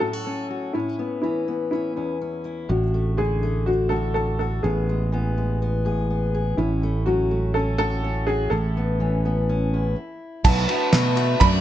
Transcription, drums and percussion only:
10.45 kick, crash
10.69 ride
10.93 snare, ride
11.17 ride
11.41 kick, ride

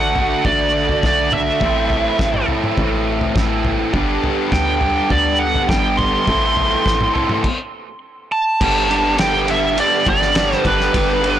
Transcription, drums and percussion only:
0.15 floor tom
0.45 kick, floor tom
0.89 floor tom
1.03 kick, snare
1.32 floor tom, mid tom
1.60 kick, floor tom
1.90 floor tom
2.19 kick, snare
2.34 mid tom
2.48 floor tom
2.64 mid tom
2.77 kick, floor tom
3.21 floor tom
3.36 kick, snare, mid tom
3.65 floor tom, mid tom
3.93 kick, floor tom
4.24 floor tom
4.52 kick, snare
4.81 floor tom
5.10 kick, floor tom
5.55 floor tom
5.69 kick, snare
5.99 floor tom, mid tom
6.27 kick, floor tom
6.57 floor tom
6.86 kick, snare
7.01 mid tom
7.15 floor tom
7.29 mid tom
7.44 kick, crash
8.61 kick, crash
8.91 ride
9.18 snare, ride
9.48 ride
9.78 ride
10.06 kick, ride
10.22 snare
10.35 snare, ride
10.51 snare
10.65 kick, ride
10.81 snare
10.94 kick, ride
11.24 ride

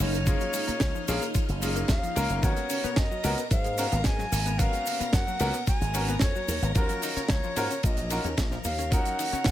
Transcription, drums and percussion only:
0.00 open hi-hat, ride
0.14 closed hi-hat, shaker
0.26 kick, closed hi-hat, ride, shaker
0.41 closed hi-hat, shaker
0.54 open hi-hat, ride, shaker
0.68 closed hi-hat, shaker
0.80 kick, snare, closed hi-hat, ride, shaker
0.95 shaker
1.08 open hi-hat, ride, shaker
1.21 closed hi-hat, shaker
1.34 kick, closed hi-hat, ride, shaker
1.49 closed hi-hat, shaker
1.62 open hi-hat, ride, shaker
1.76 closed hi-hat, shaker
1.88 kick, snare, closed hi-hat, ride, shaker
2.03 closed hi-hat, shaker
2.16 open hi-hat, ride, shaker
2.29 closed hi-hat, shaker
2.43 kick, closed hi-hat, ride, shaker
2.57 closed hi-hat, shaker
2.70 open hi-hat, ride, shaker
2.84 closed hi-hat, shaker
2.96 kick, snare, closed hi-hat, ride, shaker
3.12 shaker
3.24 open hi-hat, ride, shaker
3.38 closed hi-hat, shaker
3.51 kick, closed hi-hat, ride, shaker
3.64 closed hi-hat, shaker
3.78 open hi-hat, ride, shaker
3.92 closed hi-hat, shaker
4.04 kick, snare, closed hi-hat, ride, shaker
4.18 snare, shaker
4.32 open hi-hat, ride, shaker
4.46 closed hi-hat, shaker
4.59 kick, closed hi-hat, ride, shaker
4.73 closed hi-hat, shaker
4.86 open hi-hat, ride, shaker
5.00 closed hi-hat, shaker
5.13 kick, snare, closed hi-hat, ride, shaker
5.28 shaker
5.40 open hi-hat, ride, shaker
5.54 closed hi-hat, shaker
5.67 kick, closed hi-hat, ride, shaker
5.81 closed hi-hat, shaker
5.94 open hi-hat, ride, shaker
6.08 closed hi-hat, shaker
6.19 kick, snare, closed hi-hat, ride, shaker
6.36 shaker
6.48 open hi-hat, ride, shaker
6.63 closed hi-hat, shaker
6.75 kick, closed hi-hat, ride, shaker
6.89 closed hi-hat, shaker
7.02 open hi-hat, ride, shaker
7.16 closed hi-hat, shaker
7.28 kick, snare, closed hi-hat, ride, shaker
7.43 shaker
7.56 open hi-hat, ride, shaker
7.71 closed hi-hat, shaker
7.83 kick, closed hi-hat, ride, shaker
7.97 closed hi-hat, shaker
8.10 open hi-hat, ride, shaker
8.24 closed hi-hat, shaker
8.37 kick, snare, closed hi-hat, ride, shaker
8.51 snare, shaker
8.64 open hi-hat, ride, shaker
8.78 closed hi-hat, shaker
8.91 kick, closed hi-hat, ride, shaker
9.05 closed hi-hat, shaker
9.19 open hi-hat, ride, shaker
9.32 closed hi-hat, shaker
9.44 kick, snare, closed hi-hat, ride, shaker

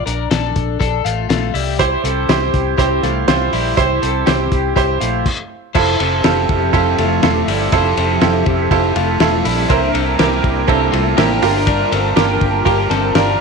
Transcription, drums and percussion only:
0.07 closed hi-hat
0.31 snare, closed hi-hat
0.56 kick, closed hi-hat
0.81 kick, closed hi-hat
1.06 closed hi-hat
1.30 snare, closed hi-hat
1.55 open hi-hat
1.79 kick, closed hi-hat
2.05 closed hi-hat
2.29 snare, closed hi-hat
2.54 kick, closed hi-hat
2.78 kick, closed hi-hat
3.03 snare, closed hi-hat
3.28 snare, closed hi-hat
3.53 open hi-hat
3.77 kick, closed hi-hat
4.03 closed hi-hat
4.27 snare, closed hi-hat
4.52 kick, closed hi-hat
4.76 kick, closed hi-hat
5.01 closed hi-hat
5.26 kick, crash
5.75 kick, crash
6.00 ride
6.24 snare, ride
6.49 kick, ride
6.74 kick, ride
6.98 snare, ride
7.23 snare, ride
7.48 open hi-hat, ride
7.72 kick, hi-hat pedal, ride
7.97 ride
8.21 snare, ride
8.46 kick, ride
8.71 kick, ride
8.96 ride
9.20 snare, ride
9.45 open hi-hat, ride
9.70 kick, hi-hat pedal, ride
9.95 ride
10.19 snare, ride
10.44 kick, ride
10.68 kick, ride
10.93 ride
11.18 snare, ride
11.42 open hi-hat, ride
11.67 kick, hi-hat pedal, ride
11.92 ride
12.17 snare, ride
12.41 kick, ride
12.66 kick, ride
12.91 snare, ride
13.15 snare, ride

